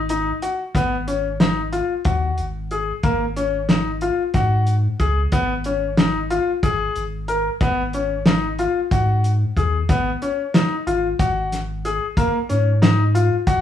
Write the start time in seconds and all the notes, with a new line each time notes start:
Already playing: G#1
0.09 D#4, closed hi-hat
0.42 F#4, closed hi-hat
0.75 G#1 B3, kick, closed hi-hat
1.07 C#4, closed hi-hat
1.40 D#4, snare, closed hi-hat
1.73 F4, closed hi-hat
2.05 D#2 F#4, kick, closed hi-hat
2.38 G#1, closed hi-hat
2.71 G#4, closed hi-hat
3.03 G#1 A#3, kick, closed hi-hat
3.36 C#4, closed hi-hat
3.69 D#4, snare, closed hi-hat
4.01 F4, closed hi-hat
4.34 G#2 F#4, kick, snare, closed hi-hat
4.67 closed hi-hat
5.00 C#2 G#4, kick, closed hi-hat
5.32 G#1 B3, kick, closed hi-hat
5.64 C#4, closed hi-hat
5.97 D#4, snare, closed hi-hat
6.30 F4, closed hi-hat
6.63 G#1 G#4, kick, closed hi-hat
6.96 G#1, closed hi-hat
7.28 A#4, closed hi-hat
7.61 G#1 B3, kick, closed hi-hat
7.93 C#4, closed hi-hat
8.26 D#4, snare, closed hi-hat
8.59 F4, closed hi-hat
8.91 G#2 F#4, kick, closed hi-hat
9.24 closed hi-hat
9.57 D#2 G#4, kick, closed hi-hat
9.89 G#1 B3, kick, closed hi-hat
10.22 C#4, closed hi-hat
10.54 D#4, snare, closed hi-hat
10.87 G#1 F4, closed hi-hat
11.19 G#1 F#4, kick, closed hi-hat
11.52 snare, closed hi-hat
11.85 G#4, closed hi-hat
12.17 G#1 A#3, kick, closed hi-hat
12.49 G#2 C#4, closed hi-hat
12.82 D#4, snare, closed hi-hat
13.15 F4, closed hi-hat
13.47 G#1 F#4, kick, closed hi-hat